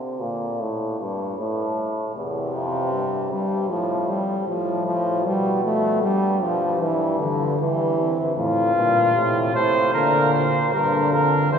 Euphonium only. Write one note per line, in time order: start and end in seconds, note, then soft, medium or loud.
0.00 0.22 C3 medium
0.20 0.61 A#2 medium
0.60 0.99 A2 medium
0.99 1.38 G2 medium
1.38 2.14 A2 medium
2.15 2.53 E2 medium
2.54 2.93 F2 medium
2.92 3.30 G2 medium
3.31 3.69 G2 medium
3.70 4.19 A2 medium
4.48 5.22 A2 medium
5.26 6.06 B2 medium
6.04 7.58 G2 medium
7.59 7.97 G2 medium
7.97 8.35 C3 medium
8.36 8.75 F2 medium
8.75 9.14 G2 medium
9.14 9.53 A2 medium
9.54 9.92 A2 medium
9.93 10.74 A#2 medium
10.73 11.14 G2 medium
11.13 11.53 F2 medium
11.51 11.59 E2 medium